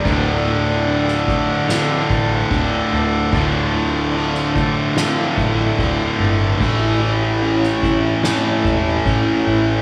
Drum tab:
CC |x-x-x-x-x-x-x-x-|x-x-x-x-x-x-x-x-|x-x-x-x-x-x-x-x-|
SD |-----o--o-------|-----o--o-------|-----o--o-------|
BD |o-----o---o-o---|o-----o---o-o---|o-----o---o-o---|